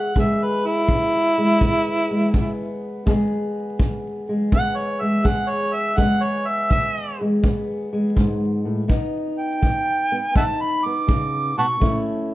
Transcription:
0.00 0.11 E3 medium
0.00 0.16 G#3 medium
0.00 0.16 B3 medium
0.00 0.17 G#4 medium
0.00 0.16 F#5 medium
0.16 0.83 E2 medium
0.16 1.37 G#3 medium
0.16 1.61 B3 medium
0.16 3.08 G#4 medium
0.16 kick medium
0.20 0.45 E5 medium
0.44 0.68 B4 medium
0.67 2.79 E4 loud
0.88 1.56 E3 medium
0.88 kick medium
1.38 2.10 G#3 medium
1.61 2.29 B2 medium
1.61 2.34 B3 medium
1.61 kick medium
2.11 3.06 G#3 medium
2.33 3.02 E3 medium
2.33 3.08 B3 medium
2.33 kick medium
3.06 3.74 E2 medium
3.06 4.29 G#3 medium
3.06 4.52 B3 medium
3.06 5.23 G#4 medium
3.06 kick medium
3.79 4.47 E3 medium
3.79 kick medium
4.29 5.00 G#3 medium
4.52 5.20 B2 medium
4.52 5.98 B3 medium
4.52 4.78 F#5 loud
4.52 kick medium
4.76 5.03 C#5 medium
5.01 5.95 G#3 medium
5.01 5.28 E5 medium
5.24 5.93 E3 medium
5.24 5.95 G#4 medium
5.24 5.52 F#5 medium
5.24 kick medium
5.50 5.75 C#5 medium
5.74 5.99 E5 medium
5.97 6.65 E2 medium
5.97 7.20 G#3 medium
5.97 7.44 B3 medium
5.97 8.87 G#4 medium
5.97 6.25 F#5 loud
5.97 kick medium
6.24 6.49 C#5 medium
6.48 6.71 E5 medium
6.70 7.39 E3 medium
6.70 7.19 E5 loud
6.70 kick medium
7.21 7.91 G#3 medium
7.43 8.11 B2 medium
7.43 8.87 B3 medium
7.43 kick medium
7.93 8.86 G#3 medium
8.16 8.66 G#2 medium
8.16 kick medium
8.65 8.88 A2 medium
8.88 9.57 B2 medium
8.88 10.11 B3 medium
8.88 10.34 D#4 medium
8.88 kick medium
9.39 10.33 G5 loud
9.62 10.30 D#3 medium
9.62 kick medium
10.12 10.85 B3 medium
10.35 11.03 F#2 medium
10.35 11.79 D#4 medium
10.35 10.44 E5 medium
10.35 10.44 F#5 medium
10.35 10.63 A5 medium
10.35 kick medium
10.61 10.86 B5 medium
10.85 11.79 B3 medium
10.85 11.55 D6 medium
11.07 11.57 C#3 medium
11.07 kick medium
11.58 11.80 B2 medium
11.58 11.67 F#5 medium
11.58 11.65 A5 medium
11.58 11.97 C#6 loud
11.80 12.34 A2 medium
11.80 12.34 A3 medium
11.80 12.34 C#4 medium
11.80 12.34 E4 medium
11.80 kick medium

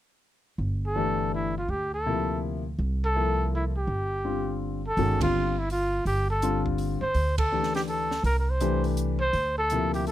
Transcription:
0.58 1.64 G1 medium
0.86 1.31 A4 medium
0.96 1.51 E3 medium
0.96 1.51 A3 medium
0.96 1.51 D4 medium
0.96 1.51 G4 medium
1.35 1.55 E4 medium
1.58 1.71 F4 medium
1.68 2.74 D2 medium
1.68 1.93 G4 medium
1.94 2.39 A4 medium
2.06 2.61 C3 medium
2.06 2.61 F3 medium
2.06 2.61 A#3 soft
2.06 2.61 E4 medium
2.79 3.84 C2 medium
3.05 3.50 A4 medium
3.16 3.71 F3 medium
3.16 3.71 A#3 medium
3.16 3.71 E4 medium
3.16 3.71 A4 medium
3.55 3.65 E4 medium
3.77 4.58 G4 medium
3.87 4.93 G1 medium
4.25 4.80 D3 soft
4.25 4.80 G3 soft
4.25 4.80 C4 soft
4.25 4.80 F4 soft
4.87 5.19 A4 medium
4.97 6.02 G1 medium
4.97 5.19 D#3 medium
4.97 5.19 G#3 medium
4.97 5.19 C#4 medium
4.97 5.19 F#4 medium
4.97 open hi-hat soft
5.21 5.52 D3 medium
5.21 5.53 G3 medium
5.21 5.53 C4 medium
5.21 5.53 F4 medium
5.21 5.60 F4 medium
5.21 kick medium
5.21 ride medium
5.59 5.71 E4 medium
5.70 6.05 F4 medium
5.70 open hi-hat soft
6.05 6.98 G1 medium
6.05 6.29 G4 medium
6.05 open hi-hat soft
6.30 6.64 A4 medium
6.42 6.98 D3 medium
6.42 6.98 G3 medium
6.42 6.98 C4 medium
6.42 6.98 F4 medium
6.42 closed hi-hat soft
6.66 kick soft
6.78 open hi-hat soft
7.02 7.36 C5 medium
7.02 muted upright bass stroke soft
7.14 8.20 D2 medium
7.14 open hi-hat soft
7.38 7.72 A4 medium
7.38 kick medium
7.38 ride medium
7.52 8.07 E3 medium
7.52 8.07 A3 soft
7.52 8.07 D4 soft
7.52 8.07 G4 medium
7.63 snare soft
7.75 7.81 G4 medium
7.75 snare soft
7.75 open hi-hat soft
7.88 8.22 A4 medium
7.88 open hi-hat soft
8.11 snare soft
8.23 9.29 C2 medium
8.23 8.39 A#4 medium
8.23 open hi-hat soft
8.39 8.51 A#4 medium
8.50 8.85 C5 medium
8.60 9.16 E3 medium
8.60 9.16 A3 medium
8.60 9.16 D4 medium
8.60 9.16 G4 medium
8.60 closed hi-hat medium
8.84 open hi-hat soft
8.97 closed hi-hat soft
9.21 9.55 C5 medium
9.33 10.12 D2 medium
9.33 open hi-hat soft
9.58 9.91 A4 medium
9.70 10.12 C3 medium
9.70 10.12 F3 medium
9.70 10.12 A#3 medium
9.70 10.12 E4 medium
9.70 closed hi-hat medium
9.94 10.06 G4 medium
9.94 open hi-hat soft
10.07 10.12 A4 medium
10.07 open hi-hat soft

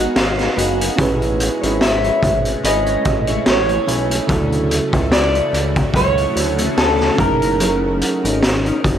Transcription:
0.00 4.25 G#3 medium
0.00 0.93 B3 medium
0.00 0.95 B3 medium
0.00 0.93 D#4 medium
0.00 0.95 D#4 medium
0.00 0.56 F#4 medium
0.00 0.94 F#4 medium
0.00 0.95 F#4 medium
0.00 0.57 G#4 soft
0.00 0.95 A#4 medium
0.00 0.98 A#4 medium
0.00 0.56 D#5 medium
0.00 0.17 F#5 medium
0.16 0.49 G#1 loud
0.16 0.95 F5 medium
0.16 snare loud
0.16 closed hi-hat medium
0.39 snare soft
0.39 closed hi-hat soft
0.56 0.90 F#1 loud
0.56 0.97 B3 medium
0.56 0.98 F#4 medium
0.56 0.98 G#4 medium
0.56 0.99 D#5 medium
0.56 closed hi-hat medium
0.81 closed hi-hat medium
0.96 1.50 A1 loud
0.96 4.24 C#4 medium
0.96 1.62 C#4 medium
0.96 4.24 E4 medium
0.96 1.62 E4 medium
0.96 4.25 G#4 medium
0.96 1.62 G#4 medium
0.96 1.60 C#5 medium
0.96 kick loud
0.96 closed hi-hat medium
1.00 8.98 C#3 medium
1.00 4.27 A3 medium
1.00 4.26 B4 medium
1.22 closed hi-hat soft
1.40 closed hi-hat medium
1.61 2.11 G#1 medium
1.61 2.04 E4 soft
1.61 2.03 G#4 soft
1.61 2.02 C#5 soft
1.61 closed hi-hat soft
1.81 2.65 E5 loud
1.81 snare loud
1.81 closed hi-hat loud
2.03 2.63 E4 soft
2.03 2.64 G#4 soft
2.03 2.63 C#5 medium
2.03 closed hi-hat soft
2.23 2.56 G#1 medium
2.23 kick medium
2.23 closed hi-hat medium
2.45 closed hi-hat soft
2.63 2.97 G#1 loud
2.63 3.27 C#4 medium
2.63 3.28 E4 medium
2.63 3.27 G#4 medium
2.63 3.26 C#5 medium
2.63 3.49 D#5 medium
2.63 closed hi-hat medium
2.86 closed hi-hat soft
3.05 3.38 A1 medium
3.05 kick loud
3.05 closed hi-hat medium
3.27 3.86 E4 medium
3.27 3.87 G#4 medium
3.27 3.87 C#5 medium
3.27 closed hi-hat medium
3.46 3.79 A1 loud
3.46 snare loud
3.46 closed hi-hat medium
3.50 4.27 C#5 medium
3.69 closed hi-hat soft
3.87 4.21 B1 medium
3.87 4.27 C#4 medium
3.87 4.28 E4 medium
3.87 4.29 G#4 medium
3.87 4.30 C#5 medium
3.87 closed hi-hat medium
4.11 closed hi-hat medium
4.27 4.80 D2 loud
4.27 7.14 C#3 medium
4.27 7.16 E3 medium
4.27 4.92 F#3 medium
4.27 7.16 A3 medium
4.27 4.93 C#4 medium
4.27 7.14 E4 medium
4.27 4.93 E4 medium
4.27 7.16 E4 medium
4.27 7.15 F#4 medium
4.27 7.16 F#4 medium
4.27 4.91 A4 medium
4.27 kick loud
4.27 closed hi-hat medium
4.31 7.16 A4 medium
4.52 closed hi-hat soft
4.71 closed hi-hat medium
4.92 5.41 C#2 medium
4.92 5.35 C#4 soft
4.92 5.34 E4 soft
4.92 5.32 A4 medium
4.92 kick medium
4.92 closed hi-hat soft
5.12 5.91 D5 loud
5.12 snare loud
5.12 closed hi-hat loud
5.33 5.94 E4 soft
5.33 5.94 A4 medium
5.33 closed hi-hat soft
5.53 5.86 C#2 medium
5.53 closed hi-hat medium
5.76 kick medium
5.76 closed hi-hat soft
5.93 6.27 C#2 loud
5.93 6.58 F#3 medium
5.93 6.58 C#4 medium
5.93 6.58 E4 medium
5.93 6.57 A4 medium
5.93 6.77 C#5 loud
5.93 kick medium
5.93 closed hi-hat medium
6.18 closed hi-hat soft
6.36 6.69 D2 medium
6.36 closed hi-hat medium
6.58 7.19 C#4 soft
6.58 7.19 E4 soft
6.58 7.18 A4 medium
6.58 closed hi-hat medium
6.77 7.11 D2 loud
6.77 7.16 A4 medium
6.77 snare loud
6.77 closed hi-hat medium
7.00 snare soft
7.16 8.03 F#1 loud
7.16 7.58 F#3 medium
7.16 8.98 F#3 medium
7.16 8.98 C#4 medium
7.16 7.59 C#4 medium
7.16 8.98 D#4 medium
7.16 8.98 G#4 medium
7.16 kick loud
7.16 closed hi-hat medium
7.20 7.60 D#4 medium
7.20 8.98 A#4 medium
7.20 7.61 A#4 medium
7.42 closed hi-hat medium
7.59 8.24 F#3 medium
7.59 8.24 C#4 medium
7.59 8.24 D#4 medium
7.59 8.22 A#4 medium
7.59 closed hi-hat medium
8.01 closed hi-hat medium
8.23 8.72 G#1 medium
8.23 8.67 C#4 soft
8.23 8.65 D#4 medium
8.23 8.64 A#4 medium
8.23 closed hi-hat soft
8.43 snare loud
8.43 closed hi-hat loud
8.65 8.98 C#4 soft
8.65 8.98 D#4 medium
8.65 8.98 A#4 medium
8.65 closed hi-hat soft
8.84 8.98 F#1 medium
8.84 kick medium
8.84 closed hi-hat medium

